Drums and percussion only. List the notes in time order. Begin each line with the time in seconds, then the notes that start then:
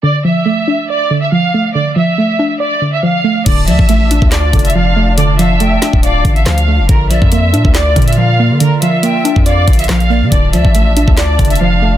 3.46 kick, closed hi-hat, crash
3.68 closed hi-hat
3.79 kick
3.89 closed hi-hat
4.11 closed hi-hat
4.22 kick
4.32 snare, clap, closed hi-hat
4.53 kick, closed hi-hat
4.59 closed hi-hat
4.65 closed hi-hat
4.70 closed hi-hat
5.18 closed hi-hat
5.39 closed hi-hat
5.60 closed hi-hat
5.82 snare, closed hi-hat
5.93 kick
6.03 closed hi-hat
6.25 kick, closed hi-hat
6.36 closed hi-hat
6.46 cross-stick, snare, clap, closed hi-hat
6.58 closed hi-hat
6.89 kick, closed hi-hat
7.11 closed hi-hat
7.22 kick
7.32 closed hi-hat
7.54 closed hi-hat
7.65 kick
7.75 snare, clap, closed hi-hat
7.96 kick, closed hi-hat
8.02 closed hi-hat
8.08 closed hi-hat
8.13 closed hi-hat
8.60 closed hi-hat
8.82 closed hi-hat
9.03 closed hi-hat
9.25 closed hi-hat
9.36 kick
9.46 closed hi-hat
9.68 kick, closed hi-hat
9.73 closed hi-hat
9.79 closed hi-hat
9.84 closed hi-hat
9.89 cross-stick, snare, clap, closed hi-hat
10.00 closed hi-hat
10.32 kick, closed hi-hat
10.53 closed hi-hat
10.65 kick
10.75 closed hi-hat
10.97 closed hi-hat
11.08 kick
11.17 snare, clap, closed hi-hat
11.39 kick, closed hi-hat
11.45 closed hi-hat
11.50 closed hi-hat
11.55 closed hi-hat